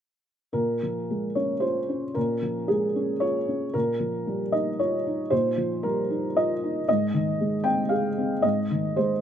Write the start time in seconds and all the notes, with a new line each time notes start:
0.53 A#2 A#4
0.82 F3
1.10 G#3
1.35 C#4 C#5
1.60 F4 C5
1.89 C#4
2.14 A#2 A#4
2.42 F3
2.68 G#3 G#4
2.96 C#4
3.20 F4 C#5
3.48 C#4
3.73 A#2 A#4
4.00 F3
4.27 G3
4.52 D#4 D#5
4.79 F4 C#5
5.07 D#4
5.30 A#2 C5
5.57 F3
5.83 G3 A#4
6.10 D#4
6.37 F4 D#5
6.64 D#4
6.89 G#2 D#5
7.14 D#3
7.41 G#3
7.64 C4 G5
7.89 G#4 F5
8.18 C4
8.42 G#2 D#5
8.71 D#3
8.96 G#3 C5